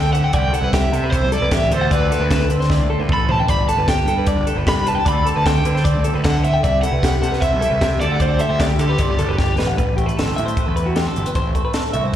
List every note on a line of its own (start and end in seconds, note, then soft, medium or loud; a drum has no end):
0.00 0.31 A2 medium
0.00 0.25 D3 medium
0.00 0.33 D3 medium
0.00 0.91 G3 medium
0.00 0.53 C4 medium
0.00 0.14 G4 medium
0.00 0.13 A4 medium
0.00 0.12 G5 loud
0.13 0.23 G4 medium
0.13 0.23 C5 medium
0.13 0.34 F#5 loud
0.13 closed hi-hat medium
0.23 0.33 A4 medium
0.23 0.33 G5 medium
0.33 0.49 C2 medium
0.33 1.31 C3 medium
0.33 0.73 G4 medium
0.33 0.53 D5 medium
0.33 0.54 G5 loud
0.33 kick loud
0.33 closed hi-hat medium
0.53 1.12 E4 medium
0.53 0.63 A4 medium
0.53 0.74 F#5 medium
0.53 closed hi-hat medium
0.62 0.85 C2 medium
0.62 0.73 B4 medium
0.73 1.73 G4 medium
0.73 0.93 G4 medium
0.73 1.14 E5 medium
0.73 kick loud
0.73 snare loud
0.73 closed hi-hat medium
0.91 1.22 C3 medium
0.91 1.72 G3 medium
0.91 1.04 A4 medium
0.91 closed hi-hat medium
1.04 1.13 B4 medium
1.11 1.69 E4 medium
1.11 1.30 C5 medium
1.11 1.32 C5 medium
1.11 kick loud
1.11 closed hi-hat medium
1.21 1.29 C2 medium
1.32 1.51 B2 medium
1.32 1.42 A4 medium
1.32 1.53 D5 medium
1.32 closed hi-hat medium
1.42 1.49 C2 loud
1.42 1.52 B4 medium
1.51 1.67 A1 medium
1.51 1.71 C3 medium
1.51 1.71 G4 medium
1.51 1.71 E5 medium
1.51 kick loud
1.51 snare loud
1.51 closed hi-hat medium
1.71 2.09 D2 medium
1.71 3.29 D3 medium
1.71 2.29 G3 soft
1.71 1.92 C4 medium
1.71 2.09 G4 medium
1.71 1.81 A4 medium
1.71 3.09 A4 medium
1.71 1.90 C5 medium
1.71 closed hi-hat medium
1.81 1.91 F#5 medium
1.91 2.50 C4 medium
1.91 2.47 B4 medium
1.91 2.11 D5 medium
1.91 kick loud
1.91 closed hi-hat medium
2.10 2.71 G4 medium
2.10 2.22 A4 medium
2.10 closed hi-hat medium
2.20 2.43 D2 medium
2.20 2.31 B4 medium
2.30 4.08 G3 medium
2.30 2.50 A4 medium
2.30 kick loud
2.30 snare loud
2.30 closed hi-hat medium
2.48 2.80 D3 medium
2.48 2.89 C4 medium
2.48 2.60 B4 medium
2.48 closed hi-hat medium
2.60 2.70 C5 medium
2.60 snare soft
2.70 3.27 A2 medium
2.70 3.30 G4 medium
2.70 2.89 D5 medium
2.70 kick loud
2.70 snare medium
2.78 2.86 D2 medium
2.90 3.68 C4 medium
2.90 3.00 A4 medium
2.99 3.07 D2 medium
2.99 3.10 B4 medium
3.09 3.40 A1 medium
3.09 3.29 A4 medium
3.09 3.27 A4 medium
3.09 kick loud
3.09 mid tom medium
3.13 3.31 B5 loud
3.29 3.49 D3 medium
3.29 3.50 G4 medium
3.29 3.39 C5 medium
3.29 3.49 A5 medium
3.29 floor tom medium
3.40 3.48 G5 medium
3.48 3.64 G1 medium
3.48 5.06 G2 medium
3.48 3.89 G4 medium
3.48 3.68 D5 medium
3.48 3.68 B5 loud
3.48 kick loud
3.48 closed hi-hat medium
3.68 4.29 D4 medium
3.68 3.78 A4 medium
3.68 3.86 A5 medium
3.68 closed hi-hat medium
3.77 4.00 G1 medium
3.77 3.88 B4 medium
3.88 4.08 G4 medium
3.88 4.47 G4 medium
3.88 4.25 G5 medium
3.88 kick loud
3.88 snare loud
3.88 closed hi-hat medium
4.05 4.37 G2 medium
4.05 5.07 G3 medium
4.05 4.18 A4 medium
4.05 closed hi-hat medium
4.18 4.28 B4 medium
4.26 4.66 D4 medium
4.26 4.47 D5 medium
4.26 kick loud
4.26 closed hi-hat medium
4.36 4.44 G1 medium
4.47 5.06 D3 medium
4.47 5.09 G4 medium
4.47 4.57 A4 medium
4.47 closed hi-hat medium
4.55 4.63 G1 medium
4.55 4.66 B4 medium
4.66 4.97 C2 medium
4.66 5.04 D4 medium
4.66 4.86 G4 medium
4.66 4.88 B5 loud
4.66 kick loud
4.66 snare loud
4.66 closed hi-hat medium
4.86 4.96 B4 medium
4.86 5.04 B4 medium
4.86 5.07 A5 medium
4.86 closed hi-hat medium
4.95 5.05 G5 medium
5.05 5.21 D2 loud
5.05 6.24 D3 medium
5.05 5.65 G3 medium
5.05 5.26 C4 medium
5.05 5.25 D5 medium
5.05 5.28 B5 loud
5.05 kick loud
5.05 closed hi-hat medium
5.09 5.46 G4 medium
5.09 6.63 A4 medium
5.26 5.86 C4 medium
5.26 5.35 A4 medium
5.26 5.46 A5 medium
5.26 closed hi-hat medium
5.36 5.59 D2 medium
5.36 5.45 B4 medium
5.45 6.06 G4 medium
5.45 5.65 A4 medium
5.45 5.85 G5 medium
5.45 kick loud
5.45 snare loud
5.45 closed hi-hat loud
5.65 5.96 D3 medium
5.65 7.23 G3 medium
5.65 5.74 B4 medium
5.65 closed hi-hat medium
5.75 5.85 C5 medium
5.75 snare soft
5.84 6.83 C4 medium
5.84 6.04 D5 medium
5.84 kick loud
5.84 closed hi-hat medium
5.94 6.02 D2 medium
6.04 6.62 A2 medium
6.04 6.65 G4 medium
6.04 6.14 A4 medium
6.04 closed hi-hat medium
6.13 6.21 D2 medium
6.13 6.25 B4 medium
6.24 6.55 D3 medium
6.24 6.44 E3 medium
6.24 6.43 A4 medium
6.24 6.44 F#5 loud
6.24 kick loud
6.24 snare loud
6.24 closed hi-hat medium
6.43 6.64 D3 medium
6.43 6.53 C5 medium
6.43 6.81 E5 loud
6.43 closed hi-hat medium
6.54 6.63 G5 medium
6.63 6.79 C2 loud
6.63 7.99 C3 medium
6.63 7.04 G4 medium
6.63 6.83 D5 medium
6.63 kick loud
6.63 closed hi-hat medium
6.82 7.42 E4 medium
6.82 6.92 A4 medium
6.82 7.37 F#5 loud
6.82 closed hi-hat medium
6.92 7.15 C2 medium
6.92 7.03 B4 medium
7.03 7.22 G4 medium
7.03 7.62 G4 medium
7.03 kick loud
7.03 snare loud
7.03 closed hi-hat medium
7.22 7.54 C3 medium
7.22 7.62 G3 medium
7.22 7.32 A4 medium
7.22 closed hi-hat medium
7.32 7.42 B4 medium
7.32 snare soft
7.41 7.80 E4 medium
7.41 7.61 C5 medium
7.41 8.02 E5 loud
7.41 kick loud
7.41 closed hi-hat medium
7.52 7.60 C2 medium
7.61 8.00 G3 medium
7.61 8.02 G4 medium
7.61 7.71 A4 medium
7.61 closed hi-hat medium
7.71 7.79 C2 medium
7.71 7.81 B4 medium
7.81 7.97 C3 medium
7.81 7.99 E4 medium
7.81 8.01 G4 medium
7.81 kick loud
7.81 snare loud
7.81 closed hi-hat medium
8.00 8.39 D2 medium
8.00 8.99 D3 medium
8.00 8.59 G3 medium
8.00 8.20 C4 soft
8.00 8.39 G4 medium
8.00 8.11 A4 medium
8.00 8.98 A4 medium
8.00 8.21 D5 medium
8.00 closed hi-hat medium
8.12 8.19 F#5 medium
8.20 8.80 C4 medium
8.20 8.41 C5 medium
8.20 8.40 D5 medium
8.20 kick loud
8.20 closed hi-hat medium
8.39 8.97 G4 medium
8.39 8.50 A4 medium
8.39 8.59 E5 medium
8.39 closed hi-hat medium
8.49 8.73 D2 medium
8.49 8.59 C5 medium
8.59 9.57 G3 medium
8.59 8.79 G4 medium
8.59 8.66 D5 medium
8.59 kick loud
8.59 snare loud
8.59 closed hi-hat medium
8.79 8.94 D3 medium
8.79 8.98 C4 medium
8.79 9.55 G4 medium
8.79 8.89 A4 medium
8.79 closed hi-hat medium
8.89 8.99 B4 medium
8.98 9.07 G1 loud
8.98 9.78 G2 medium
8.98 9.09 C4 medium
8.98 9.19 D5 medium
8.98 kick loud
8.98 closed hi-hat medium
9.09 9.17 G1 medium
9.09 9.17 D4 medium
9.18 9.37 F#1 medium
9.18 9.38 D4 medium
9.18 9.29 A4 medium
9.18 closed hi-hat medium
9.29 9.37 B4 medium
9.37 9.56 G1 medium
9.37 9.76 D4 medium
9.37 9.58 G4 medium
9.37 kick loud
9.37 snare medium
9.58 9.76 A1 medium
9.58 9.98 G3 medium
9.58 9.68 B4 medium
9.58 snare medium
9.67 9.77 F#5 medium
9.77 10.09 A1 loud
9.77 11.34 A2 medium
9.77 9.96 B4 medium
9.77 kick loud
9.77 closed hi-hat medium
9.97 11.54 A3 medium
9.97 10.06 G4 medium
9.97 kick medium
9.97 closed hi-hat medium
10.06 10.17 B4 medium
10.06 closed hi-hat medium
10.17 10.33 G1 medium
10.17 10.97 C4 medium
10.17 10.37 A4 medium
10.17 snare loud
10.17 closed hi-hat medium
10.29 snare soft
10.36 10.53 A2 medium
10.36 10.77 G4 medium
10.36 10.45 E5 medium
10.36 closed hi-hat medium
10.45 10.66 C5 medium
10.45 closed hi-hat medium
10.57 11.40 B4 medium
10.57 kick loud
10.57 closed hi-hat medium
10.66 11.06 E2 medium
10.66 10.76 A4 medium
10.76 11.16 G4 medium
10.76 10.86 B4 medium
10.76 closed hi-hat medium
10.86 10.96 F#4 medium
10.96 11.75 C4 medium
10.96 11.07 G4 medium
10.96 snare loud
10.96 closed hi-hat medium
11.07 11.26 A4 medium
11.16 11.24 G1 medium
11.16 11.34 G4 medium
11.16 closed hi-hat medium
11.26 11.35 B4 medium
11.26 closed hi-hat medium
11.35 11.51 A1 medium
11.35 12.16 A2 medium
11.35 11.55 C5 medium
11.35 kick loud
11.35 closed hi-hat medium
11.55 12.16 A3 medium
11.55 11.64 A4 medium
11.55 kick medium
11.55 closed hi-hat medium
11.65 11.74 B4 medium
11.74 12.16 C4 medium
11.74 11.93 A4 medium
11.74 snare loud
11.74 closed hi-hat medium
11.93 12.02 C2 medium
11.93 12.16 F#4 medium
11.93 12.04 E5 medium
11.93 closed hi-hat medium
12.04 12.16 C2 medium
12.04 12.16 C5 medium